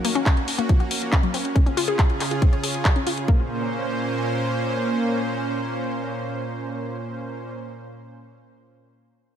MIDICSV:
0, 0, Header, 1, 4, 480
1, 0, Start_track
1, 0, Key_signature, -5, "minor"
1, 0, Tempo, 431655
1, 1730, Time_signature, 4, 2, 24, 8
1, 10409, End_track
2, 0, Start_track
2, 0, Title_t, "Supersaw synth"
2, 0, Program_c, 0, 81
2, 0, Note_on_c, 0, 58, 70
2, 0, Note_on_c, 0, 61, 67
2, 0, Note_on_c, 0, 66, 82
2, 1713, Note_off_c, 0, 58, 0
2, 1713, Note_off_c, 0, 66, 0
2, 1730, Note_on_c, 0, 49, 75
2, 1730, Note_on_c, 0, 65, 66
2, 1731, Note_on_c, 0, 68, 80
2, 3614, Note_off_c, 0, 61, 0
2, 3631, Note_off_c, 0, 49, 0
2, 3631, Note_off_c, 0, 65, 0
2, 3632, Note_off_c, 0, 68, 0
2, 3649, Note_on_c, 0, 58, 64
2, 3649, Note_on_c, 0, 61, 66
2, 3649, Note_on_c, 0, 72, 78
2, 3650, Note_on_c, 0, 46, 75
2, 8335, Note_off_c, 0, 58, 0
2, 8335, Note_off_c, 0, 61, 0
2, 8335, Note_off_c, 0, 72, 0
2, 8336, Note_off_c, 0, 46, 0
2, 10409, End_track
3, 0, Start_track
3, 0, Title_t, "Synth arpeggio sound"
3, 0, Program_c, 1, 84
3, 50, Note_on_c, 1, 58, 97
3, 106, Note_off_c, 1, 58, 0
3, 170, Note_on_c, 1, 61, 97
3, 226, Note_off_c, 1, 61, 0
3, 290, Note_on_c, 1, 61, 98
3, 346, Note_off_c, 1, 61, 0
3, 650, Note_on_c, 1, 58, 74
3, 684, Note_off_c, 1, 58, 0
3, 770, Note_on_c, 1, 53, 95
3, 826, Note_off_c, 1, 53, 0
3, 890, Note_on_c, 1, 66, 72
3, 946, Note_off_c, 1, 66, 0
3, 1249, Note_on_c, 1, 61, 98
3, 1305, Note_off_c, 1, 61, 0
3, 1370, Note_on_c, 1, 54, 77
3, 1426, Note_off_c, 1, 54, 0
3, 1490, Note_on_c, 1, 60, 72
3, 1524, Note_off_c, 1, 60, 0
3, 1729, Note_on_c, 1, 61, 93
3, 1785, Note_off_c, 1, 61, 0
3, 1850, Note_on_c, 1, 61, 72
3, 1884, Note_off_c, 1, 61, 0
3, 1969, Note_on_c, 1, 65, 98
3, 2026, Note_off_c, 1, 65, 0
3, 2089, Note_on_c, 1, 68, 99
3, 2146, Note_off_c, 1, 68, 0
3, 2210, Note_on_c, 1, 68, 100
3, 2266, Note_off_c, 1, 68, 0
3, 2571, Note_on_c, 1, 65, 73
3, 2604, Note_off_c, 1, 65, 0
3, 2690, Note_on_c, 1, 60, 93
3, 2746, Note_off_c, 1, 60, 0
3, 2810, Note_on_c, 1, 73, 73
3, 2866, Note_off_c, 1, 73, 0
3, 2931, Note_on_c, 1, 68, 73
3, 2986, Note_off_c, 1, 68, 0
3, 3170, Note_on_c, 1, 68, 76
3, 3226, Note_off_c, 1, 68, 0
3, 3290, Note_on_c, 1, 61, 75
3, 3346, Note_off_c, 1, 61, 0
3, 3411, Note_on_c, 1, 65, 99
3, 3466, Note_off_c, 1, 65, 0
3, 3650, Note_on_c, 1, 58, 88
3, 3874, Note_off_c, 1, 58, 0
3, 10409, End_track
4, 0, Start_track
4, 0, Title_t, "Drums"
4, 51, Note_on_c, 9, 46, 91
4, 162, Note_off_c, 9, 46, 0
4, 172, Note_on_c, 9, 42, 49
4, 284, Note_off_c, 9, 42, 0
4, 291, Note_on_c, 9, 36, 106
4, 292, Note_on_c, 9, 39, 101
4, 292, Note_on_c, 9, 42, 47
4, 402, Note_off_c, 9, 36, 0
4, 403, Note_off_c, 9, 39, 0
4, 403, Note_off_c, 9, 42, 0
4, 412, Note_on_c, 9, 42, 24
4, 523, Note_off_c, 9, 42, 0
4, 532, Note_on_c, 9, 46, 91
4, 643, Note_off_c, 9, 46, 0
4, 653, Note_on_c, 9, 42, 49
4, 764, Note_off_c, 9, 42, 0
4, 771, Note_on_c, 9, 36, 99
4, 772, Note_on_c, 9, 42, 46
4, 882, Note_off_c, 9, 36, 0
4, 883, Note_off_c, 9, 42, 0
4, 891, Note_on_c, 9, 42, 25
4, 1003, Note_off_c, 9, 42, 0
4, 1011, Note_on_c, 9, 46, 90
4, 1122, Note_off_c, 9, 46, 0
4, 1131, Note_on_c, 9, 42, 48
4, 1242, Note_off_c, 9, 42, 0
4, 1251, Note_on_c, 9, 36, 101
4, 1252, Note_on_c, 9, 39, 108
4, 1252, Note_on_c, 9, 42, 49
4, 1362, Note_off_c, 9, 36, 0
4, 1363, Note_off_c, 9, 39, 0
4, 1363, Note_off_c, 9, 42, 0
4, 1371, Note_on_c, 9, 42, 25
4, 1483, Note_off_c, 9, 42, 0
4, 1491, Note_on_c, 9, 46, 88
4, 1602, Note_off_c, 9, 46, 0
4, 1612, Note_on_c, 9, 42, 47
4, 1723, Note_off_c, 9, 42, 0
4, 1731, Note_on_c, 9, 36, 101
4, 1732, Note_on_c, 9, 42, 51
4, 1842, Note_off_c, 9, 36, 0
4, 1843, Note_off_c, 9, 42, 0
4, 1852, Note_on_c, 9, 42, 25
4, 1963, Note_off_c, 9, 42, 0
4, 1972, Note_on_c, 9, 46, 93
4, 2083, Note_off_c, 9, 46, 0
4, 2092, Note_on_c, 9, 42, 50
4, 2203, Note_off_c, 9, 42, 0
4, 2211, Note_on_c, 9, 36, 109
4, 2212, Note_on_c, 9, 39, 108
4, 2212, Note_on_c, 9, 42, 47
4, 2322, Note_off_c, 9, 36, 0
4, 2323, Note_off_c, 9, 39, 0
4, 2323, Note_off_c, 9, 42, 0
4, 2332, Note_on_c, 9, 42, 24
4, 2443, Note_off_c, 9, 42, 0
4, 2451, Note_on_c, 9, 39, 33
4, 2451, Note_on_c, 9, 46, 88
4, 2563, Note_off_c, 9, 39, 0
4, 2563, Note_off_c, 9, 46, 0
4, 2571, Note_on_c, 9, 42, 52
4, 2682, Note_off_c, 9, 42, 0
4, 2691, Note_on_c, 9, 36, 101
4, 2691, Note_on_c, 9, 42, 49
4, 2802, Note_off_c, 9, 36, 0
4, 2802, Note_off_c, 9, 42, 0
4, 2812, Note_on_c, 9, 42, 26
4, 2923, Note_off_c, 9, 42, 0
4, 2930, Note_on_c, 9, 46, 89
4, 3042, Note_off_c, 9, 46, 0
4, 3050, Note_on_c, 9, 42, 50
4, 3161, Note_off_c, 9, 42, 0
4, 3170, Note_on_c, 9, 39, 109
4, 3170, Note_on_c, 9, 42, 52
4, 3171, Note_on_c, 9, 36, 96
4, 3281, Note_off_c, 9, 39, 0
4, 3281, Note_off_c, 9, 42, 0
4, 3282, Note_off_c, 9, 36, 0
4, 3290, Note_on_c, 9, 42, 26
4, 3401, Note_off_c, 9, 42, 0
4, 3410, Note_on_c, 9, 46, 86
4, 3521, Note_off_c, 9, 46, 0
4, 3530, Note_on_c, 9, 42, 48
4, 3641, Note_off_c, 9, 42, 0
4, 3650, Note_on_c, 9, 36, 94
4, 3762, Note_off_c, 9, 36, 0
4, 10409, End_track
0, 0, End_of_file